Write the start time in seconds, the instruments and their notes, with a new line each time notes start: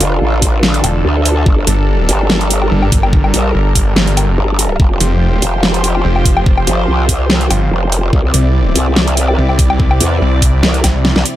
Already playing: analog synth pad D3 D4 F4 A4
0.00 wobble bass F1, closed hi-hat
0.21 wobble bass A1
0.42 kick, closed hi-hat
0.63 snare
0.74 closed hi-hat
0.84 detuned saw bass E1, closed hi-hat, low woodblock
1.05 wobble bass D2
1.25 closed hi-hat
1.46 wobble bass G1, analog synth pad G3 A#4, kick
1.67 detuned saw bass G1, closed hi-hat
2.09 wobble bass G1, closed hi-hat
2.30 snare
2.41 closed hi-hat
2.50 closed hi-hat
2.62 low woodblock
2.71 detuned saw bass G1
2.82 low woodblock
2.92 kick, closed hi-hat
3.03 low woodblock
3.13 kick
3.24 low woodblock
3.34 wobble bass A#1, closed hi-hat
3.55 detuned saw bass G1
3.75 detuned saw bass G1, kick, closed hi-hat
3.96 detuned saw bass G1, snare
4.07 closed hi-hat
4.17 closed hi-hat, low woodblock
4.38 wobble bass G1
4.59 closed hi-hat
4.80 wobble bass F1, analog synth pad F3 F4 G4 C5, kick
5.00 detuned saw bass F1, closed hi-hat
5.42 wobble bass F1, closed hi-hat
5.63 snare
5.74 closed hi-hat
5.84 closed hi-hat
5.95 low woodblock
6.05 detuned saw bass F1
6.16 low woodblock
6.26 kick, closed hi-hat
6.37 low woodblock
6.46 kick
6.58 low woodblock
6.67 wobble bass G1, closed hi-hat
6.88 wobble bass C2
7.09 kick, closed hi-hat
7.30 snare
7.41 closed hi-hat
7.50 detuned saw bass G1, closed hi-hat, low woodblock
7.71 wobble bass F1
7.92 closed hi-hat
8.13 wobble bass C2, analog synth pad C3 C4 E4 D5, kick
8.34 detuned saw bass C2, closed hi-hat
8.76 wobble bass C2, closed hi-hat
8.96 snare
9.08 closed hi-hat
9.17 closed hi-hat
9.28 low woodblock
9.38 detuned saw bass C2
9.49 low woodblock
9.59 kick, closed hi-hat
9.70 low woodblock
9.80 kick
9.91 low woodblock
10.00 wobble bass E2, closed hi-hat
10.21 detuned saw bass C2
10.42 kick, closed hi-hat
10.63 wobble bass C2, snare
10.74 closed hi-hat
10.84 detuned saw bass C2, kick, snare, closed hi-hat, low woodblock
11.05 snare
11.16 wobble bass C2, snare
11.26 closed hi-hat